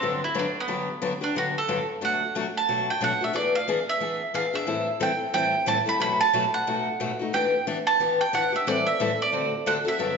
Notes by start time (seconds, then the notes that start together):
Already playing: C4
0.02 G2 D3 F#3 B3 D4 G4
0.24 E4
0.34 G2 D3 F#3 B3 D4 G4
0.39 D4
0.60 B3
0.68 G2 D3 F#3 B3 D4 G4
1.02 G2 D3 F#3 B3 D4 G4
1.21 F#3 B3 D4 G4
1.35 G2 D3 F#3 B3 D4 F#4 G4
1.58 A4
1.68 G2 D3 F#3 B3 D4 G4
2.01 B2 F#3 A3 D4 F#4 F#5
2.35 B2 F#3 A3 D4 F#4
2.57 A5
2.68 B2 F#3 A3 D4 F#4
2.90 G5
3.01 B2 F#3 A3 D4 F#4 F#5
3.21 A3 D4 F#4 E5
3.33 E3 B3 D4 G#4 D5
3.55 F5
3.68 E3 B3 D4 G#4
3.89 E5
4.00 E3 B3 D4 G#4
4.34 E3 B3 D4 G#4 F5
4.54 B3 D4 G#4 E5
4.67 A2 E3 G3 C4 E4 A4
5.00 A2 E3 G3 C4 E4 A4 G5
5.34 A2 E3 G3 C4 E4 A4 G5
5.66 A2 E3 G3 C4 E4 A4 A5
5.86 G3 C4 E4 A4 B5
6.00 B2 F#3 A3 D#4 F#4 B5
6.21 A5
6.33 B2 F#3 A3 D#4 F#4
6.54 F#5
6.67 B2 F#3 A3 D#4 F#4
7.00 B2 F#3 A3 D#4 F#4
7.19 A3 D#4 F#4
7.33 E3 B3 D4 G4 G5
7.67 E3 B3 D4 G4
7.87 A5
8.00 E3 B3 D4 G4
8.21 G5
8.33 E3 B3 D4 G4 F#5
8.52 B3 D4 G4 E5
8.67 A2 E3 G3 C4 E4 A4 D5
8.86 E5
9.00 A2 E3 G3 C4 E4 A4
9.22 D5
9.32 D3 A3 C4 F#4 A4
9.66 D3 A3 C4 F#4 A4 F#5
9.85 C4 F#4 A4 E5
9.99 G2 D3 F#3 B3 D4 G4